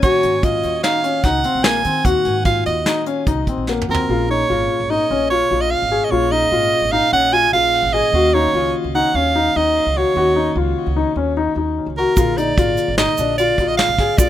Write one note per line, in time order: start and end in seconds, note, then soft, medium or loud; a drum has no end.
0.01 0.11 D#2 medium
0.01 2.01 D#3 medium
0.01 2.01 A#3 medium
0.01 2.01 C#4 medium
0.01 0.31 F#4 medium
0.01 2.02 F#4 medium
0.01 0.45 C#5 medium
0.01 kick loud
0.01 closed hi-hat medium
0.23 0.57 G#2 medium
0.23 closed hi-hat medium
0.43 0.71 F4 medium
0.43 0.82 D#5 medium
0.43 kick medium
0.43 closed hi-hat medium
0.63 0.81 D#2 medium
0.63 closed hi-hat soft
0.83 0.98 D#4 medium
0.83 1.25 F5 medium
0.83 snare medium
0.83 closed hi-hat medium
1.04 1.18 C#4 medium
1.04 closed hi-hat medium
1.23 1.41 C#2 medium
1.23 1.39 D#4 medium
1.23 1.65 F#5 medium
1.23 kick medium
1.23 snare soft
1.23 closed hi-hat medium
1.44 1.59 C4 medium
1.44 closed hi-hat medium
1.55 1.80 A#1 medium
1.63 1.79 A#3 medium
1.63 2.07 G#5 medium
1.63 snare loud
1.63 closed hi-hat medium
1.85 2.02 D#3 medium
1.85 1.99 C4 medium
1.85 closed hi-hat medium
2.04 2.14 D#2 medium
2.04 3.84 D#3 medium
2.04 3.84 A#3 medium
2.04 3.85 D#4 medium
2.04 2.33 F#4 medium
2.04 3.85 F#4 medium
2.04 2.44 F#5 medium
2.04 kick loud
2.04 closed hi-hat medium
2.25 2.59 G#2 medium
2.25 closed hi-hat medium
2.45 2.74 F4 medium
2.45 2.64 F5 medium
2.45 kick loud
2.45 closed hi-hat medium
2.66 2.83 D#2 medium
2.66 3.04 D#5 medium
2.66 closed hi-hat medium
2.86 3.01 D#4 medium
2.86 snare medium
2.86 closed hi-hat medium
3.06 3.21 C#4 medium
3.06 closed hi-hat medium
3.27 3.44 C2 medium
3.27 3.41 D#4 medium
3.27 kick medium
3.27 closed hi-hat medium
3.47 3.62 C4 medium
3.47 3.67 D#5 medium
3.47 kick medium
3.47 closed hi-hat medium
3.58 3.83 A#1 medium
3.67 3.83 A#3 medium
3.67 4.06 F#5 medium
3.67 snare soft
3.81 mid tom medium
3.88 4.05 F2 medium
3.88 4.08 D#3 soft
3.88 4.07 A#3 soft
3.88 4.03 C4 medium
3.88 4.09 F4 soft
3.88 4.09 F#4 medium
3.88 4.27 A#4 medium
3.94 floor tom medium
4.07 4.42 A#1 medium
4.07 6.06 A#2 medium
4.07 6.07 A#3 medium
4.07 6.07 C#4 medium
4.07 4.23 F4 medium
4.07 6.08 G#4 medium
4.29 4.43 D#4 medium
4.29 4.91 C#5 medium
4.49 4.66 G#1 medium
4.49 4.77 F4 medium
4.80 4.96 G#1 medium
4.90 5.04 D#4 medium
4.90 5.29 D#5 medium
5.10 5.44 A#1 medium
5.10 5.24 C#4 medium
5.30 5.45 F4 medium
5.30 5.62 C#5 medium
5.51 5.76 A#1 medium
5.51 5.79 F4 medium
5.61 5.73 D#5 medium
5.71 6.06 F5 medium
5.82 5.98 G#1 medium
5.92 6.05 G#4 medium
6.04 6.12 D#5 medium
6.09 6.45 A#1 medium
6.09 7.49 A#2 medium
6.09 7.49 A#3 medium
6.09 7.50 C#4 medium
6.09 6.25 F4 medium
6.09 7.50 G#4 medium
6.09 6.33 C#5 medium
6.31 6.46 D#4 medium
6.31 6.93 D#5 medium
6.52 6.68 G#1 medium
6.52 6.80 F4 medium
6.82 6.98 G#1 medium
6.92 7.06 D#4 medium
6.92 7.12 F5 loud
7.12 7.46 A#1 medium
7.12 7.26 C#4 medium
7.12 7.34 F#5 loud
7.33 7.46 F4 medium
7.33 7.52 G#5 loud
7.52 7.78 A#1 medium
7.52 8.13 A#2 soft
7.52 8.11 A#3 soft
7.52 8.12 C#4 soft
7.52 7.81 F4 medium
7.52 8.14 G#4 medium
7.52 7.95 F5 loud
7.83 7.99 G#1 medium
7.93 8.07 G#4 medium
7.93 8.35 D#5 medium
8.12 8.46 D#2 medium
8.12 10.11 D#3 medium
8.12 10.11 A#3 medium
8.12 10.12 C#4 medium
8.12 10.12 F#4 medium
8.12 8.28 F#4 medium
8.33 8.48 D#4 medium
8.33 8.74 C#5 medium
8.54 8.70 C#2 medium
8.54 8.82 F4 medium
8.84 9.01 C#2 medium
8.95 9.09 D#4 medium
8.95 9.17 F#5 medium
9.14 9.48 D#2 medium
9.14 9.29 C#4 medium
9.14 9.58 F5 loud
9.36 9.49 D#4 medium
9.56 9.80 D#2 medium
9.56 9.83 D#4 medium
9.56 9.99 D#5 medium
9.86 10.02 C#2 medium
9.97 10.10 F#4 medium
9.97 10.57 C#5 medium
10.14 10.49 D#2 medium
10.14 12.12 D#3 medium
10.14 12.13 A#3 medium
10.14 12.13 C#4 medium
10.14 12.14 F#4 medium
10.14 10.30 F#4 medium
10.36 10.50 D#4 medium
10.56 10.72 C#2 medium
10.56 10.84 F4 medium
10.86 11.03 C#2 medium
10.96 11.10 D#4 medium
11.16 11.49 D#2 medium
11.16 11.30 C#4 medium
11.37 11.51 D#4 medium
11.56 11.81 D#2 medium
11.56 11.85 D#4 medium
11.87 12.03 C#2 medium
11.97 12.12 F#4 medium
11.97 12.39 A#4 medium
12.15 12.50 A#1 medium
12.15 14.14 A#2 medium
12.15 14.15 D3 medium
12.15 14.14 A#3 medium
12.15 12.31 F4 medium
12.15 14.15 G#4 medium
12.15 kick loud
12.15 closed hi-hat medium
12.15 shaker medium
12.38 12.51 D#4 medium
12.38 12.97 D5 medium
12.38 closed hi-hat medium
12.58 12.74 G#1 medium
12.58 12.85 F4 medium
12.58 kick loud
12.58 closed hi-hat medium
12.77 closed hi-hat medium
12.77 shaker soft
12.88 13.05 G#1 medium
12.98 13.12 D#4 medium
12.98 13.35 D#5 medium
12.98 snare loud
12.98 closed hi-hat medium
12.98 shaker soft
13.18 13.51 A#1 medium
13.18 13.33 D4 medium
13.18 closed hi-hat medium
13.18 shaker soft
13.38 13.53 F4 medium
13.38 13.69 D5 medium
13.38 closed hi-hat medium
13.58 13.83 A#1 medium
13.58 13.87 F4 medium
13.58 kick medium
13.58 closed hi-hat medium
13.67 13.76 D#5 medium
13.77 14.19 F5 medium
13.77 snare loud
13.77 closed hi-hat medium
13.89 14.05 G#1 medium
13.98 14.13 G#4 medium
13.98 kick medium
13.98 snare soft
13.98 closed hi-hat medium
14.17 14.29 A#1 medium
14.17 14.29 A#2 medium
14.17 14.29 A#3 medium
14.17 14.29 D4 medium
14.17 14.29 F4 medium
14.17 14.29 G#4 medium
14.17 14.29 D5 medium
14.17 kick loud
14.17 closed hi-hat medium
14.17 shaker medium